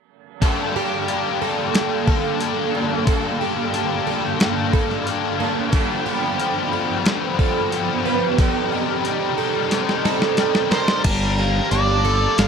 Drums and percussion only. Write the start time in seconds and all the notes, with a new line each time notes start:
0.42 kick, open hi-hat
1.08 open hi-hat
1.75 snare, open hi-hat
2.08 kick
2.41 open hi-hat
3.07 kick, open hi-hat
3.74 open hi-hat
4.40 snare, open hi-hat
4.73 kick
4.91 snare
5.07 open hi-hat
5.73 kick, open hi-hat
6.40 open hi-hat
7.06 snare, open hi-hat
7.39 kick
7.72 open hi-hat
8.38 kick, open hi-hat
9.05 open hi-hat
9.71 snare, open hi-hat
9.89 snare
10.05 snare
10.22 snare
10.37 snare, open hi-hat
10.55 snare
10.72 snare
10.88 snare
11.04 kick, open hi-hat, crash
11.71 open hi-hat
12.38 snare, open hi-hat